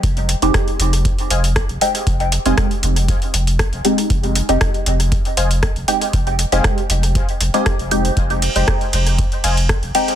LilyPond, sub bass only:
\new Staff \with { instrumentName = "Sub bass" } { \clef bass \time 4/4 \key f \minor \tempo 4 = 118 f,,8 r16 f,,16 r8 f,,8 r8 f,,8 r16 f,,16 r8 | f,,8 r16 f,,16 r8 f,,8 r8 f,,8 r16 f,,16 r8 | f,,8 r16 f,,16 r8 f,,8 r8 f,,8 r16 f,,16 r8 | f,,8 r16 f,,16 r8 f,,8 r8 f,,16 r8 f,,8 r16 |
f,,8 r16 f,,16 r8 f,,8 r8 f,,8 r16 f,,16 r8 | }